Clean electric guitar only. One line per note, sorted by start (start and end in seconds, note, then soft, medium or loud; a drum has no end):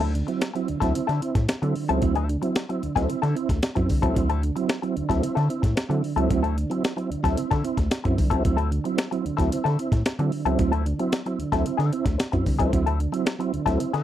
0.00 0.12 F#3 medium
0.00 0.13 C4 medium
0.00 0.13 E4 medium
0.00 0.13 A4 medium
0.13 muted clean electric guitar stroke soft
0.27 muted clean electric guitar stroke soft
0.41 muted clean electric guitar stroke soft
0.54 muted clean electric guitar stroke soft
0.80 0.92 F#3 medium
0.80 0.93 C4 medium
0.80 0.94 E4 medium
0.80 0.94 A4 medium
0.94 muted clean electric guitar stroke soft
1.07 1.20 F#3 medium
1.07 1.21 C4 medium
1.07 1.21 E4 medium
1.07 1.21 A4 medium
1.35 muted clean electric guitar stroke soft
1.48 muted clean electric guitar stroke soft
1.62 muted clean electric guitar stroke soft
1.89 2.01 F#3 medium
1.89 2.02 C4 medium
1.89 2.02 E4 medium
1.89 2.03 A4 medium
2.16 2.27 F#3 medium
2.16 2.28 C4 medium
2.16 2.28 E4 medium
2.16 2.29 A4 medium
2.29 muted clean electric guitar stroke soft
2.42 muted clean electric guitar stroke medium
2.56 muted clean electric guitar stroke soft
2.69 muted clean electric guitar stroke soft
2.96 3.08 F#3 medium
2.96 3.09 C4 medium
2.96 3.09 E4 medium
2.96 3.10 A4 medium
3.22 3.34 F#3 medium
3.22 3.34 C4 medium
3.22 3.35 E4 medium
3.22 3.36 A4 medium
3.36 muted clean electric guitar stroke soft
3.50 muted clean electric guitar stroke soft
3.63 muted clean electric guitar stroke soft
3.75 muted clean electric guitar stroke medium
4.02 4.15 F#3 medium
4.02 4.15 C4 medium
4.02 4.16 E4 medium
4.02 4.16 A4 medium
4.16 muted clean electric guitar stroke soft
4.30 4.42 F#3 medium
4.30 4.42 C4 medium
4.30 4.42 E4 medium
4.30 4.43 A4 medium
4.56 muted clean electric guitar stroke soft
4.68 muted clean electric guitar stroke soft
4.82 muted clean electric guitar stroke soft
5.09 5.21 F#3 medium
5.09 5.22 C4 medium
5.09 5.23 E4 medium
5.09 5.23 A4 medium
5.22 muted clean electric guitar stroke soft
5.35 5.48 F#3 medium
5.35 5.48 C4 medium
5.35 5.49 E4 medium
5.35 5.49 A4 medium
5.62 muted clean electric guitar stroke soft
5.75 muted clean electric guitar stroke soft
5.90 muted clean electric guitar stroke soft
6.16 6.29 F#3 medium
6.16 6.29 C4 medium
6.16 6.30 E4 medium
6.16 6.30 A4 medium
6.43 6.56 F#3 medium
6.43 6.57 C4 medium
6.43 6.56 E4 medium
6.43 6.57 A4 medium
6.57 muted clean electric guitar stroke soft
6.71 muted clean electric guitar stroke soft
6.85 muted clean electric guitar stroke soft
6.97 muted clean electric guitar stroke soft
7.24 7.37 F#3 medium
7.24 7.38 C4 medium
7.24 7.38 E4 medium
7.24 7.38 A4 medium
7.38 muted clean electric guitar stroke soft
7.51 7.63 F#3 medium
7.51 7.63 C4 medium
7.51 7.63 E4 medium
7.51 7.64 A4 medium
7.64 muted clean electric guitar stroke soft
7.78 muted clean electric guitar stroke medium
7.91 muted clean electric guitar stroke soft
8.04 muted clean electric guitar stroke soft
8.30 8.42 F#3 medium
8.30 8.43 C4 medium
8.30 8.43 E4 medium
8.30 8.43 A4 medium
8.57 8.69 F#3 medium
8.57 8.70 C4 medium
8.57 8.70 E4 medium
8.57 8.71 A4 medium
8.70 muted clean electric guitar stroke soft
8.84 muted clean electric guitar stroke soft
8.97 muted clean electric guitar stroke soft
9.11 muted clean electric guitar stroke soft
9.37 9.50 F#3 medium
9.37 9.50 C4 medium
9.37 9.50 E4 medium
9.37 9.50 A4 medium
9.51 muted clean electric guitar stroke soft
9.64 9.78 F#3 medium
9.64 9.78 C4 medium
9.64 9.78 E4 medium
9.64 9.79 A4 medium
9.79 muted clean electric guitar stroke soft
9.93 muted clean electric guitar stroke soft
10.07 muted clean electric guitar stroke soft
10.20 muted clean electric guitar stroke soft
10.45 10.58 F#3 medium
10.45 10.58 C4 medium
10.45 10.58 E4 medium
10.45 10.59 A4 medium
10.59 muted clean electric guitar stroke soft
10.72 10.84 F#3 medium
10.72 10.85 C4 medium
10.72 10.85 E4 medium
10.72 10.86 A4 medium
10.86 muted clean electric guitar stroke soft
10.99 muted clean electric guitar stroke medium
11.13 muted clean electric guitar stroke soft
11.26 muted clean electric guitar stroke soft
11.52 11.64 F#3 medium
11.52 11.65 C4 medium
11.52 11.65 E4 medium
11.52 11.66 A4 medium
11.65 muted clean electric guitar stroke soft
11.77 11.91 F#3 medium
11.77 11.91 C4 medium
11.77 11.92 E4 medium
11.77 11.92 A4 medium
12.05 muted clean electric guitar stroke soft
12.18 muted clean electric guitar stroke soft
12.32 muted clean electric guitar stroke soft
12.59 12.71 F#3 medium
12.59 12.71 C4 medium
12.59 12.72 E4 medium
12.59 12.72 A4 medium
12.72 muted clean electric guitar stroke soft
12.86 12.98 F#3 medium
12.86 12.99 C4 medium
12.86 12.99 E4 medium
12.86 13.00 A4 medium
12.99 muted clean electric guitar stroke soft
13.12 muted clean electric guitar stroke medium
13.26 muted clean electric guitar stroke soft
13.40 muted clean electric guitar stroke soft
13.66 13.78 F#3 medium
13.66 13.79 C4 medium
13.66 13.79 E4 medium
13.66 13.79 A4 medium
13.79 muted clean electric guitar stroke soft
13.93 14.03 F#3 medium
13.93 14.03 C4 medium
13.93 14.03 E4 medium
13.93 14.03 A4 medium